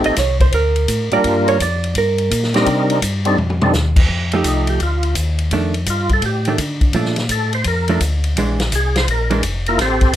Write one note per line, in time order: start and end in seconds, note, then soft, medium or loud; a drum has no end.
0.00 0.15 A3 medium
0.00 0.15 C4 medium
0.00 0.16 D#4 medium
0.00 0.16 G4 medium
0.00 0.16 A4 medium
0.04 0.12 A1 soft
0.04 0.18 D#5 loud
0.04 ride medium
0.16 0.52 C2 loud
0.16 0.40 C#5 medium
0.16 kick soft
0.16 snare soft
0.16 hi-hat pedal medium
0.16 ride medium
0.40 0.53 C5 medium
0.40 kick medium
0.40 ride soft
0.52 0.87 D2 medium
0.52 1.09 A#4 medium
0.52 kick soft
0.52 ride medium
0.76 ride soft
0.88 1.10 A2 loud
0.88 kick soft
0.88 hi-hat pedal medium
0.88 ride medium
1.11 1.18 A2 soft
1.11 1.58 G3 medium
1.11 1.58 A#3 medium
1.11 1.58 D4 medium
1.11 1.58 F4 medium
1.11 1.59 A#4 medium
1.11 1.20 D5 loud
1.11 ride soft
1.24 1.59 G2 medium
1.24 kick soft
1.24 ride medium
1.48 1.60 C#5 loud
1.48 ride medium
1.59 1.94 F2 medium
1.59 1.94 D5 loud
1.59 kick soft
1.59 hi-hat pedal medium
1.59 ride medium
1.84 ride soft
1.95 2.30 G2 medium
1.95 2.52 A#4 medium
1.95 kick soft
1.95 ride medium
2.18 ride soft
2.31 2.66 A#2 loud
2.31 kick soft
2.31 hi-hat pedal medium
2.31 ride medium
2.43 snare soft
2.54 3.00 G3 medium
2.54 3.00 C4 medium
2.54 3.00 D4 medium
2.54 3.01 D#4 medium
2.54 3.00 G4 medium
2.54 3.01 A#4 medium
2.54 snare soft
2.54 ride soft
2.66 3.01 C3 medium
2.66 kick soft
2.66 ride medium
2.90 ride medium
3.02 3.37 G2 loud
3.02 kick soft
3.02 hi-hat pedal medium
3.02 ride medium
3.25 3.37 G3 medium
3.25 3.37 C4 medium
3.25 3.37 D4 medium
3.25 3.38 D#4 medium
3.25 3.38 A4 medium
3.25 ride medium
3.38 3.73 F2 medium
3.38 mid tom medium
3.50 mid tom medium
3.62 3.73 G3 medium
3.62 3.73 C4 medium
3.62 3.73 D4 medium
3.62 3.73 D#4 medium
3.62 3.74 A4 medium
3.62 mid tom medium
3.73 4.08 D#2 loud
3.73 snare medium
3.73 hi-hat pedal medium
3.96 kick medium
3.96 crash medium
4.09 4.44 F2 medium
4.09 kick soft
4.32 4.79 F3 medium
4.32 4.79 A3 medium
4.32 4.79 D#4 medium
4.32 4.79 G4 medium
4.32 ride soft
4.44 4.79 C2 medium
4.44 4.69 D#4 medium
4.44 kick soft
4.44 hi-hat pedal medium
4.44 ride medium
4.67 4.81 G4 loud
4.67 ride soft
4.80 5.15 D2 medium
4.80 5.15 F4 medium
4.80 kick soft
4.80 ride medium
5.03 ride soft
5.15 5.50 D#2 loud
5.15 kick soft
5.15 hi-hat pedal medium
5.15 ride medium
5.38 ride soft
5.51 5.86 F2 medium
5.51 5.73 D#3 medium
5.51 5.73 A3 medium
5.51 5.74 D4 medium
5.51 kick soft
5.51 ride medium
5.74 ride soft
5.86 6.22 G2 medium
5.86 6.11 F4 medium
5.86 kick soft
5.86 hi-hat pedal medium
5.86 ride medium
6.09 kick soft
6.09 ride soft
6.13 6.24 A4 loud
6.22 6.57 A2 medium
6.22 6.58 G4 medium
6.22 kick soft
6.22 ride medium
6.45 6.58 D#3 medium
6.45 6.59 A3 medium
6.45 6.59 D4 medium
6.45 ride soft
6.58 6.93 D3 loud
6.58 kick soft
6.58 hi-hat pedal medium
6.58 ride medium
6.81 kick medium
6.81 ride soft
6.93 7.29 A#2 medium
6.93 7.15 F3 medium
6.93 7.16 A3 medium
6.93 7.16 D4 medium
6.93 kick soft
6.93 ride medium
7.05 snare soft
7.16 snare soft
7.16 ride medium
7.29 7.64 A2 medium
7.29 7.53 A4 medium
7.29 kick soft
7.29 hi-hat pedal medium
7.29 ride medium
7.53 7.66 C5 loud
7.53 ride soft
7.64 8.00 F2 medium
7.64 8.00 A#4 medium
7.64 kick soft
7.64 ride medium
7.88 8.00 F3 medium
7.88 8.00 A3 medium
7.88 8.01 D4 medium
7.88 ride soft
8.00 8.35 D2 loud
8.00 kick soft
8.00 hi-hat pedal medium
8.00 ride medium
8.24 ride soft
8.36 8.71 A#1 medium
8.36 8.58 E3 medium
8.36 8.58 G#3 medium
8.36 8.59 D4 medium
8.36 kick soft
8.36 ride medium
8.60 snare medium
8.60 ride medium
8.72 9.07 C2 medium
8.72 8.96 G#4 medium
8.72 kick soft
8.72 hi-hat pedal medium
8.72 ride medium
8.96 9.09 C5 loud
8.96 snare medium
8.96 ride medium
9.07 9.42 A#1 medium
9.07 9.43 A#4 medium
9.07 kick soft
9.07 ride medium
9.30 9.42 E3 medium
9.30 9.42 G#3 medium
9.30 9.43 D4 medium
9.30 ride soft
9.43 9.78 F1 loud
9.43 kick soft
9.43 hi-hat pedal medium
9.43 ride medium
9.66 9.80 A#3 medium
9.66 9.80 E4 medium
9.66 9.80 F4 medium
9.66 9.80 A#4 medium
9.66 ride soft
9.78 10.13 A1 medium
9.78 10.14 C4 medium
9.78 10.13 G4 medium
9.78 10.14 A4 medium
9.78 10.14 C5 medium
9.78 kick soft
9.78 snare soft
9.78 ride medium
10.01 kick medium
10.01 ride medium
10.13 10.16 G1 medium